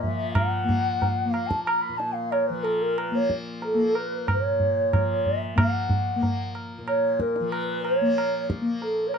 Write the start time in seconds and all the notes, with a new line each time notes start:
Already playing: A#2 F3 A#3
0.01 F3 E5, tabla ge
0.33 F#5, tabla na, tabla ge
0.64 A#3
0.69 tabla ge
1.02 tabla tin, tabla ge
1.26 A#3
1.30 F5, tabla na
1.46 A5
1.51 tabla ke
1.63 A#5
1.67 tabla na
1.81 B5
1.89 A#2
1.97 A5, tabla te
2.12 F5
2.31 C#5, tabla na
2.46 F3 B4
2.63 A4, tabla na
2.81 A#4
2.97 B4, tabla na
3.11 A#3 C#5
3.30 tabla ke
3.62 A4, tabla tin
3.74 A#3
3.95 B4, tabla na
4.27 C#5, tabla na, tabla ge
4.33 A#2
4.60 tabla ge
4.93 F3, tabla na, tabla ge
5.25 E5, tabla ge
5.55 A#3 F#5, tabla na, tabla ge
5.90 tabla ge
6.16 A#3
6.23 tabla tin, tabla ge
6.55 tabla na
6.78 A#2
6.87 C#5, tabla na
7.20 A#4, tabla ke
7.36 tabla te
7.40 F3
7.50 B4, tabla na
7.83 C#5, tabla na
8.01 A#3
8.18 tabla na
8.50 tabla ke
8.62 A#3
8.81 A4, tabla tin
9.07 C#5
9.13 B4, tabla na